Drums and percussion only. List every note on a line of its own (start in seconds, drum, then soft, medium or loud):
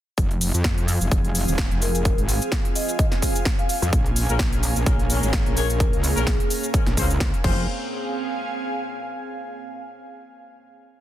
0.18 kick loud
0.18 closed hi-hat medium
0.18 shaker soft
0.31 closed hi-hat soft
0.41 open hi-hat loud
0.41 shaker medium
0.54 closed hi-hat soft
0.54 shaker soft
0.64 kick loud
0.64 snare loud
0.64 closed hi-hat medium
0.64 shaker soft
0.78 closed hi-hat medium
0.88 open hi-hat loud
0.88 shaker medium
1.01 closed hi-hat soft
1.01 shaker soft
1.11 kick loud
1.11 closed hi-hat medium
1.11 shaker soft
1.25 closed hi-hat soft
1.35 open hi-hat loud
1.35 shaker medium
1.48 shaker soft
1.58 kick loud
1.58 snare loud
1.58 closed hi-hat medium
1.58 shaker soft
1.71 closed hi-hat soft
1.82 open hi-hat loud
1.82 shaker medium
1.95 closed hi-hat medium
1.95 shaker soft
2.05 kick loud
2.05 closed hi-hat medium
2.05 shaker soft
2.18 closed hi-hat soft
2.29 open hi-hat loud
2.29 shaker medium
2.42 closed hi-hat soft
2.42 shaker soft
2.52 kick loud
2.52 snare loud
2.52 closed hi-hat medium
2.52 shaker soft
2.65 closed hi-hat medium
2.76 open hi-hat loud
2.76 shaker medium
2.89 closed hi-hat soft
2.89 shaker soft
2.99 kick loud
2.99 closed hi-hat medium
2.99 shaker soft
3.12 snare soft
3.12 closed hi-hat soft
3.22 kick medium
3.22 open hi-hat loud
3.22 shaker medium
3.35 closed hi-hat soft
3.35 shaker soft
3.45 kick loud
3.45 snare loud
3.45 closed hi-hat medium
3.45 shaker soft
3.59 closed hi-hat soft
3.69 open hi-hat loud
3.69 shaker medium
3.82 closed hi-hat medium
3.82 shaker soft
3.93 kick loud
3.93 closed hi-hat medium
3.93 shaker soft
4.06 closed hi-hat soft
4.16 open hi-hat loud
4.16 shaker medium
4.29 closed hi-hat soft
4.29 shaker soft
4.39 kick loud
4.39 snare loud
4.39 closed hi-hat medium
4.39 shaker soft
4.53 closed hi-hat medium
4.63 open hi-hat loud
4.63 shaker medium
4.76 closed hi-hat soft
4.76 shaker soft
4.86 kick loud
4.86 closed hi-hat medium
4.86 shaker soft
4.99 closed hi-hat soft
5.10 open hi-hat loud
5.10 shaker medium
5.23 shaker soft
5.33 kick loud
5.33 snare loud
5.33 closed hi-hat medium
5.33 shaker soft
5.46 closed hi-hat soft
5.57 open hi-hat loud
5.57 shaker medium
5.70 closed hi-hat medium
5.70 shaker soft
5.80 kick loud
5.80 closed hi-hat medium
5.80 shaker soft
5.93 closed hi-hat soft
6.04 open hi-hat loud
6.04 shaker medium
6.17 closed hi-hat soft
6.17 shaker soft
6.27 kick loud
6.27 snare loud
6.27 closed hi-hat medium
6.27 shaker soft
6.40 closed hi-hat medium
6.50 open hi-hat loud
6.50 shaker medium
6.63 closed hi-hat soft
6.63 shaker soft
6.74 kick loud
6.74 closed hi-hat medium
6.74 shaker soft
6.87 snare soft
6.87 closed hi-hat soft
6.97 kick medium
6.97 open hi-hat loud
6.97 shaker medium
7.10 closed hi-hat soft
7.10 shaker soft
7.20 kick loud
7.20 snare loud
7.20 closed hi-hat medium
7.20 shaker soft
7.34 closed hi-hat soft
7.44 kick loud
7.44 crash medium